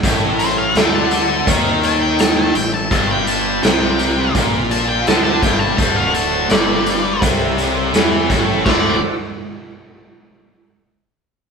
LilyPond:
<<
  \new Staff \with { instrumentName = "Lead electric guitar" } { \time 4/4 \key a \dorian \tempo 4 = 84 r8 c''16 f''16 g''16 a''16 a''8 r8 a''16 g''16 a''16 a''16 g''16 a''16 | a''16 g''16 a''8 g''4 r8 a''16 g''16 a''16 a''16 g''16 a''16 | a''16 f''16 a''8 d''4 r2 | d''8 r2. r8 | }
  \new Staff \with { instrumentName = "Tonewheel organ" } { \time 4/4 \key a \dorian <g' a' cis'' e''>1 | <f' g' b' d''>1 | <fis' a' c'' d''>2 <g' a' cis'' e''>2 | <fis' c'' d'' e''>8 r2. r8 | }
  \new Staff \with { instrumentName = "Distorted electric guitar" } { \clef bass \time 4/4 \key a \dorian a,4 d4 ees4. a,8 | g,4 c4 bes,4 d8 g,8 | d,4 g,4 c4 e8 a,8 | <d, a, d>8 r2. r8 | }
  \new Staff \with { instrumentName = "Fingered electric bass" } { \clef bass \time 4/4 \key a \dorian a,,4 d,4 ees,4. a,,8 | g,,4 c,4 bes,,4 d,8 g,,8 | d,,4 g,,4 c,4 e,8 a,,8 | d,,8 r2. r8 | }
  \new DrumStaff \with { instrumentName = "Drums" } \drummode { \time 4/4 <hh bd>8 hh8 <hh sn>8 hh8 <hh bd>8 hh8 <hh sn>8 hh8 | <hh bd>8 hh8 <hh sn>8 hh8 <hh bd>8 hh8 <hh sn>8 <hh bd>8 | <hh bd>8 hh8 <hh sn>8 hh8 <hh bd>8 hh8 <hh sn>8 <hh bd sn>8 | <cymc bd sn>4 r4 r4 r4 | }
>>